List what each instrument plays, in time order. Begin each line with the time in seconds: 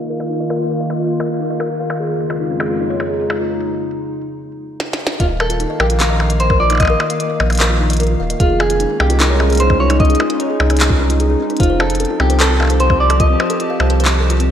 Already playing: ambient pad D#3 A#3 F4 F5
0.10 kalimba A#4
0.20 kalimba F4, percussion blips
0.30 kalimba D#4
0.40 kalimba D#5
0.50 kalimba A#4, percussion blips
0.60 kalimba F4
0.70 kalimba F5
0.80 kalimba D#5
0.90 kalimba D#5, percussion blips
1.00 kalimba D#5
1.20 kalimba A#4, percussion blips
1.30 kalimba F4
1.40 kalimba D#4
1.50 kalimba D#5
1.60 kalimba A#4, percussion blips
1.70 kalimba F4
1.80 kalimba F5
1.90 kalimba D#5, percussion blips
2.00 ambient pad F2, kalimba G#4
2.06 ambient pad C#3, kalimba G#4
2.20 ambient pad G#3
2.30 kalimba F4, percussion blips
2.40 kalimba D#4
2.50 kalimba C#4
2.60 kalimba G#4, percussion blips
2.70 kalimba F4
2.80 kalimba D#4
2.90 ambient pad D#4, kalimba C#5
3.00 kalimba G#4, percussion blips
3.10 kalimba G#4
3.20 kalimba G#4
3.30 percussion blips
3.40 kalimba F4
3.50 kalimba D#4
4.80 snare
4.93 snare
5.07 snare
5.20 analog synth bass D#1, ambient pad D#3, clean electric guitar F4, kalimba D#5, kick, closed hi-hat
5.28 ambient pad A#3
5.34 ambient pad F5
5.40 clean electric guitar A4, kalimba A#4, percussion blips
5.50 kalimba F4, closed hi-hat
5.60 kalimba D#4, closed hi-hat
5.70 kalimba D#5
5.80 analog synth bass A#1, clean electric guitar G4, kalimba A#4, percussion blips
5.90 kalimba F4, closed hi-hat
6.00 clean electric guitar A#4, kalimba F5, clap, closed hi-hat
6.10 kalimba D#5
6.20 kalimba D#5, percussion blips
6.30 kalimba D#5, closed hi-hat
6.40 clean electric guitar C5, closed hi-hat
6.50 kalimba A#4, kick, percussion blips
6.60 kalimba F4, clean electric guitar D5
6.70 kalimba D#4, closed hi-hat, percussion blips
6.72 percussion blips
6.75 percussion blips
6.78 kalimba D#5, kick, closed hi-hat, percussion blips
6.80 clean electric guitar D#5, percussion blips
6.82 percussion blips
6.85 percussion blips
6.87 kalimba A#4, percussion blips
7.00 kalimba F4, percussion blips
7.10 kalimba F5, closed hi-hat
7.20 kalimba D#5, closed hi-hat
7.30 kalimba D#5
7.40 analog synth bass A#1, kalimba D#5, percussion blips
7.50 closed hi-hat, percussion blips
7.53 closed hi-hat
7.55 closed hi-hat
7.58 kalimba A#4, clap, closed hi-hat
7.60 closed hi-hat
7.70 kalimba F4
7.80 kalimba D#4
7.90 kalimba D#5, closed hi-hat
7.93 closed hi-hat
7.97 kalimba A#4, closed hi-hat
8.00 closed hi-hat
8.03 closed hi-hat
8.07 kalimba F4, closed hi-hat
8.20 analog synth bass D#1, kalimba F5
8.30 kalimba D#5, closed hi-hat
8.40 analog synth bass F1, ambient pad C#4, clean electric guitar F4, kalimba G#4, kick, closed hi-hat
8.50 ambient pad G#3, kalimba G#4
8.60 clean electric guitar G#4, percussion blips
8.70 kalimba F4, closed hi-hat
8.80 kalimba D#4, closed hi-hat
8.90 kalimba C#4
9.00 analog synth bass C2, ambient pad D#4, clean electric guitar G4, kalimba G#4, percussion blips
9.10 kalimba F4, closed hi-hat
9.20 kalimba D#4, clean electric guitar A#4, clap, closed hi-hat
9.30 kalimba C#5
9.40 kalimba G#4, percussion blips
9.50 kalimba G#4, closed hi-hat
9.53 closed hi-hat
9.55 closed hi-hat
9.57 kalimba G#4, closed hi-hat
9.60 clean electric guitar C5, closed hi-hat
9.70 kick, percussion blips
9.80 kalimba F4, clean electric guitar C#5
9.90 kalimba D#4, closed hi-hat, percussion blips
10.00 kalimba C#4, clean electric guitar D#5, kick, closed hi-hat
10.05 closed hi-hat
10.10 kalimba G#4, closed hi-hat
10.15 closed hi-hat
10.20 kalimba F4, percussion blips
10.30 kalimba D#4, closed hi-hat
10.40 kalimba C#5, closed hi-hat
10.50 kalimba G#4
10.60 analog synth bass C2, kalimba G#4, percussion blips
10.70 kalimba G#4, closed hi-hat, percussion blips
10.77 clap, closed hi-hat
10.80 closed hi-hat
10.83 closed hi-hat
10.90 analog synth bass C2, kalimba F4, kick
11.00 kalimba D#4
11.10 kalimba F4, closed hi-hat
11.20 kalimba G#4, closed hi-hat
11.30 kalimba G#4
11.40 kalimba C#4
11.50 kalimba D#4, closed hi-hat
11.57 analog synth bass F1, kalimba C5, kick, closed hi-hat
11.60 ambient pad F3, clean electric guitar F4, closed hi-hat
11.63 ambient pad C4, closed hi-hat
11.70 kalimba C5
11.80 clean electric guitar A4, kalimba C5, percussion blips
11.90 closed hi-hat
11.95 closed hi-hat
12.00 kalimba A4, closed hi-hat
12.05 closed hi-hat
12.10 kalimba F4
12.18 analog synth bass C2, kalimba C4, ambient pad G4, clean electric guitar G4, percussion blips
12.30 kalimba C5, closed hi-hat
12.40 kalimba A4, clean electric guitar A4, clap, closed hi-hat
12.50 kalimba F4
12.60 kalimba F5, percussion blips
12.62 percussion blips
12.65 percussion blips
12.67 kalimba C5, closed hi-hat, percussion blips
12.72 ambient pad A5
12.80 kalimba C5, clean electric guitar C5, closed hi-hat
12.90 kalimba C5, kick, percussion blips
13.00 clean electric guitar D5
13.10 kalimba A4, closed hi-hat, percussion blips
13.20 kalimba F4, clean electric guitar D#5, kick, closed hi-hat
13.30 kalimba C4
13.40 kalimba C5, percussion blips
13.50 kalimba A4, closed hi-hat
13.60 kalimba F4, closed hi-hat
13.70 kalimba F5
13.80 analog synth bass C2, kalimba C5, percussion blips
13.90 kalimba C5, closed hi-hat
14.00 kalimba C5, closed hi-hat
14.05 clap
14.20 kalimba A4
14.30 kalimba F4, closed hi-hat
14.40 kalimba C4, closed hi-hat